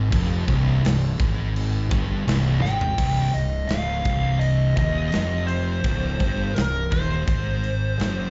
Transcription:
0.00 0.10 G#2 loud
0.12 0.45 F1 medium
0.12 0.47 F2 loud
0.12 kick loud
0.12 crash medium
0.48 0.81 C1 medium
0.48 0.83 C2 loud
0.48 kick loud
0.48 crash medium
0.84 1.17 C1 medium
0.84 1.12 C2 medium
0.84 snare loud
0.84 crash medium
1.19 1.87 G#1 medium
1.19 1.90 G#2 loud
1.19 kick loud
1.19 crash medium
1.56 crash medium
1.91 2.24 G1 loud
1.91 2.26 G2 loud
1.91 kick loud
1.91 crash medium
2.27 2.60 C1 medium
2.27 2.62 C2 loud
2.27 snare loud
2.27 crash medium
2.62 2.96 G#1 loud
2.62 2.97 G#2 medium
2.62 3.36 G5 loud
2.62 snare medium
2.81 floor tom medium
2.97 3.31 C1 medium
2.97 3.32 C2 loud
2.97 kick loud
2.97 crash loud
3.33 3.67 C1 medium
3.33 3.62 C2 medium
3.33 3.71 D#5 loud
3.33 snare soft
3.33 open hi-hat medium
3.68 4.03 C#1 loud
3.68 4.04 C#2 loud
3.68 4.42 F5 loud
3.68 snare loud
3.68 open hi-hat medium
4.05 4.73 C1 medium
4.05 4.76 C2 loud
4.05 kick loud
4.05 open hi-hat medium
4.39 4.75 D#5 loud
4.39 open hi-hat medium
4.77 5.11 D#1 loud
4.77 5.11 D#2 medium
4.77 5.46 D#5 medium
4.77 kick loud
4.77 open hi-hat medium
5.12 5.81 F1 loud
5.12 5.83 F2 medium
5.12 snare loud
5.12 open hi-hat medium
5.47 6.51 C5 medium
5.47 open hi-hat medium
5.84 6.18 C#1 medium
5.84 6.18 C#2 loud
5.84 kick loud
5.84 open hi-hat medium
6.19 6.54 G1 medium
6.19 6.54 G2 loud
6.19 kick loud
6.19 open hi-hat medium
6.54 6.89 C1 medium
6.54 6.85 C2 medium
6.54 6.92 A#4 loud
6.54 snare loud
6.54 open hi-hat medium
6.91 7.26 D#1 medium
6.91 7.25 D#2 loud
6.91 8.30 C5 medium
6.91 kick loud
6.91 open hi-hat medium
7.25 7.96 G#1 medium
7.25 7.97 G#2 loud
7.25 kick loud
7.25 open hi-hat medium
7.64 open hi-hat medium
8.00 8.30 F#1 loud
8.00 8.30 F#2 loud
8.00 snare loud
8.00 open hi-hat medium

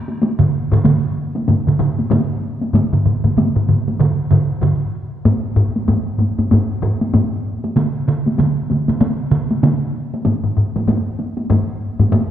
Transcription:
0.08 taiko high soft
0.22 taiko high medium
0.40 taiko low-mid medium
0.40 taiko mid medium
0.72 taiko low-mid medium
0.72 taiko mid medium
0.84 taiko low-mid medium
0.84 taiko mid medium
0.84 taiko high medium
1.35 taiko high soft
1.48 taiko low-mid medium
1.48 taiko mid medium
1.48 taiko high medium
1.67 taiko low-mid medium
1.67 taiko mid medium
1.79 taiko low-mid medium
1.79 taiko mid medium
1.99 taiko high medium
2.10 taiko low-mid medium
2.10 taiko mid medium
2.10 taiko high medium
2.61 taiko high soft
2.73 taiko low-mid medium
2.73 taiko mid medium
2.73 taiko high medium
2.93 taiko low-mid medium
2.93 taiko mid medium
3.06 taiko low-mid medium
3.06 taiko mid medium
3.24 taiko low-mid medium
3.24 taiko mid medium
3.24 taiko high soft
3.37 taiko low-mid medium
3.37 taiko mid medium
3.37 taiko high medium
3.55 taiko low-mid medium
3.55 taiko mid medium
3.68 taiko low-mid medium
3.68 taiko mid medium
3.88 taiko high medium
4.00 taiko low-mid medium
4.00 taiko mid medium
4.32 taiko low-mid medium
4.32 taiko mid medium
4.62 taiko low-mid medium
4.62 taiko mid medium
5.25 taiko low-mid medium
5.25 taiko high medium
5.56 taiko low-mid medium
5.76 taiko high soft
5.88 taiko low-mid medium
5.88 taiko high medium
6.19 taiko low-mid medium
6.19 taiko high soft
6.39 taiko low-mid medium
6.39 taiko high medium
6.51 taiko low-mid medium
6.51 taiko high medium
6.82 taiko low-mid medium
7.01 taiko high soft
7.14 taiko low-mid medium
7.14 taiko high medium
7.64 taiko high medium
7.76 taiko mid loud
7.76 taiko high medium
8.08 taiko mid medium
8.26 taiko high medium
8.38 taiko mid loud
8.38 taiko high medium
8.70 taiko mid medium
8.70 taiko high soft
8.88 taiko mid medium
8.88 taiko high medium
9.00 taiko mid medium
9.00 taiko high medium
9.31 taiko mid medium
9.51 taiko high medium
9.63 taiko mid medium
9.63 taiko high medium
10.14 taiko high medium
10.26 taiko low-mid medium
10.26 taiko high medium
10.44 taiko low-mid medium
10.57 taiko low-mid medium
10.76 taiko low-mid medium
10.76 taiko high soft
10.87 taiko low-mid medium
10.87 taiko high medium
11.19 taiko high soft
11.37 taiko high medium
11.50 taiko low-mid medium
11.50 taiko high medium
11.99 taiko low-mid medium
11.99 taiko high medium
12.12 taiko low-mid medium
12.12 taiko high medium

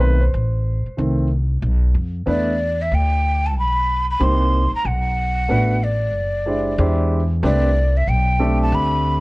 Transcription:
0.00 0.30 B1 loud
0.00 0.15 D#3 medium
0.00 0.15 A3 medium
0.00 0.15 C4 medium
0.00 0.21 B4 medium
0.20 1.13 C5 medium
0.34 0.83 A1 loud
0.86 muted upright bass stroke medium
0.97 1.59 C2 medium
0.97 1.26 D#3 medium
0.97 1.27 A3 soft
0.97 1.27 C4 medium
1.62 1.93 B1 loud
1.94 2.25 F2 medium
2.26 2.88 E2 medium
2.26 2.51 A3 medium
2.26 2.52 B3 medium
2.26 2.52 D4 medium
2.26 2.52 E4 medium
2.26 2.52 B4 medium
2.26 2.83 D5 medium
2.81 2.96 E5 medium
2.91 3.56 D2 medium
2.91 3.48 G5 medium
3.46 3.57 A5 medium
3.56 4.17 B1 medium
3.56 4.06 B5 loud
4.11 4.24 B5 medium
4.20 4.70 C2 medium
4.20 4.60 A#3 medium
4.20 4.60 C4 medium
4.20 4.61 D#4 medium
4.20 4.61 G4 medium
4.20 4.61 C5 medium
4.20 4.74 C6 loud
4.73 4.89 A#5 loud
4.73 muted upright bass stroke soft
4.85 5.46 B1 medium
4.85 5.85 F#5 loud
5.48 6.14 A1 medium
5.48 5.74 A3 medium
5.48 5.74 B3 medium
5.48 5.74 D4 medium
5.48 5.75 F#4 medium
5.48 5.75 B4 medium
5.84 7.12 D5 medium
6.14 6.75 F#1 loud
6.46 6.71 G#3 medium
6.46 6.71 D4 medium
6.46 6.71 E4 medium
6.46 6.72 G4 medium
6.46 6.72 C5 medium
6.78 7.40 E2 loud
6.78 7.19 G#3 medium
6.78 7.19 D4 medium
6.78 7.19 E4 medium
6.78 7.19 G4 medium
6.78 7.19 C5 medium
7.43 8.04 C2 loud
7.43 7.68 A3 medium
7.43 7.68 C4 medium
7.43 7.68 D4 medium
7.43 7.68 G4 medium
7.43 7.68 B4 medium
7.43 7.98 D5 loud
7.97 8.11 E5 medium
8.07 8.69 B1 medium
8.07 8.61 G5 medium
8.39 9.20 A3 medium
8.39 9.20 C4 medium
8.39 9.20 D4 medium
8.39 9.20 G4 medium
8.39 9.20 A4 medium
8.62 8.76 A5 medium
8.72 9.20 D2 medium
8.72 9.20 B5 medium

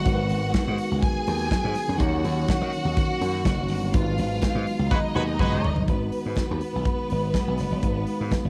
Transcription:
0.00 5.85 D#3 medium
0.00 0.04 G#3 medium
0.00 1.96 G#3 medium
0.00 1.97 B3 medium
0.00 0.05 D#4 medium
0.00 0.06 F#4 medium
0.00 1.00 F#4 medium
0.00 1.96 F#4 medium
0.00 0.13 B4 medium
0.00 0.99 F#5 loud
0.04 0.27 G#1 loud
0.04 1.95 G#3 medium
0.04 1.96 D#4 medium
0.04 1.96 F#4 medium
0.04 0.12 A#4 medium
0.04 kick loud
0.04 closed hi-hat medium
0.13 2.00 B4 loud
0.29 0.51 G#1 loud
0.29 open hi-hat medium
0.54 kick loud
0.54 snare loud
0.54 closed hi-hat medium
0.54 high conga loud
0.68 0.78 G#2 loud
0.78 open hi-hat medium
0.91 1.02 C#2 medium
1.02 1.98 G#4 medium
1.02 1.98 G#5 loud
1.02 kick loud
1.02 closed hi-hat medium
1.02 muted conga medium
1.27 1.48 D#2 medium
1.27 open hi-hat medium
1.27 muted conga medium
1.51 muted slap bass stroke medium
1.51 kick loud
1.51 snare loud
1.51 closed hi-hat medium
1.51 high conga medium
1.64 1.74 G#2 loud
1.75 snare soft
1.75 open hi-hat medium
1.88 1.99 F#2 medium
1.88 high conga medium
1.98 2.21 D#2 loud
1.98 3.89 D#3 medium
1.98 5.85 F#3 medium
1.98 3.93 A#3 medium
1.98 3.92 C#4 medium
1.98 3.90 D#4 medium
1.98 3.90 F#4 medium
1.98 3.91 C#5 medium
1.98 3.90 F#5 medium
1.98 kick loud
1.98 closed hi-hat medium
2.25 2.45 D#2 medium
2.25 open hi-hat medium
2.48 muted slap bass stroke medium
2.48 kick loud
2.48 snare loud
2.48 closed hi-hat medium
2.48 high conga medium
2.62 2.72 D#3 loud
2.73 open hi-hat medium
2.85 2.95 D#2 medium
2.85 low conga medium
2.97 kick loud
2.97 closed hi-hat medium
2.97 muted conga medium
2.97 low conga medium
3.21 3.42 F#2 medium
3.21 open hi-hat medium
3.21 muted conga medium
3.45 3.69 F#1 loud
3.45 kick loud
3.45 snare loud
3.45 closed hi-hat medium
3.45 high conga medium
3.68 3.90 G1 loud
3.68 open hi-hat medium
3.82 high conga medium
3.92 4.15 G#1 loud
3.92 5.84 G#3 medium
3.92 5.87 G#3 medium
3.92 5.87 B3 medium
3.92 5.84 D#4 medium
3.92 4.90 F4 medium
3.92 5.84 F#4 medium
3.92 5.85 B4 medium
3.92 4.90 F5 medium
3.92 kick loud
3.92 closed hi-hat medium
4.18 4.39 G#1 medium
4.18 open hi-hat medium
4.42 kick loud
4.42 snare loud
4.42 closed hi-hat medium
4.42 high conga medium
4.55 4.65 G#2 loud
4.67 open hi-hat medium
4.79 4.90 C#2 loud
4.91 4.99 G#3 medium
4.91 5.87 D#4 medium
4.91 4.99 F#4 medium
4.91 4.99 B4 loud
4.91 5.87 D#5 medium
4.91 kick loud
4.91 high tom medium
4.91 muted conga medium
4.91 low conga medium
5.15 5.36 D#2 medium
5.15 5.23 G#3 medium
5.15 5.23 F#4 loud
5.15 5.23 B4 loud
5.15 mid tom medium
5.15 muted conga medium
5.39 5.61 C#2 medium
5.39 5.71 G#3 loud
5.39 5.71 F#4 medium
5.39 5.71 B4 loud
5.39 kick loud
5.39 mid tom medium
5.39 high conga medium
5.52 mid tom medium
5.64 5.86 G1 medium
5.64 floor tom loud
5.76 floor tom loud
5.76 high conga medium
5.86 6.09 G#1 loud
5.86 8.49 D#3 medium
5.86 7.78 G#3 medium
5.86 8.49 G#3 medium
5.86 8.49 B3 soft
5.86 8.49 B3 medium
5.86 7.79 D#4 medium
5.86 7.81 F#4 medium
5.86 7.79 F#4 medium
5.86 8.49 B4 medium
5.86 7.80 B4 medium
5.86 kick medium
5.86 closed hi-hat medium
5.86 muted conga soft
6.12 open hi-hat medium
6.26 6.36 G#2 medium
6.36 kick medium
6.36 snare loud
6.36 closed hi-hat medium
6.36 high conga medium
6.51 6.61 D#2 medium
6.61 open hi-hat soft
6.73 6.85 B1 medium
6.73 low conga medium
6.85 kick loud
6.85 closed hi-hat medium
6.85 muted conga medium
7.10 7.32 G#1 medium
7.10 open hi-hat medium
7.10 muted conga soft
7.33 kick medium
7.33 snare medium
7.33 closed hi-hat medium
7.33 high conga medium
7.45 7.58 B1 medium
7.45 high conga soft
7.58 7.70 F#1 medium
7.58 snare soft
7.58 open hi-hat medium
7.71 7.82 G1 medium
7.71 high conga medium
7.82 8.04 G#1 loud
7.82 8.49 G#3 medium
7.82 8.49 D#4 medium
7.82 8.49 F#4 medium
7.82 8.49 B4 medium
7.82 8.49 F5 medium
7.82 kick medium
7.82 closed hi-hat medium
7.82 muted conga soft
8.07 open hi-hat medium
8.21 8.31 G#2 medium
8.31 kick medium
8.31 snare medium
8.31 closed hi-hat medium
8.31 high conga medium
8.45 8.49 G#1 medium

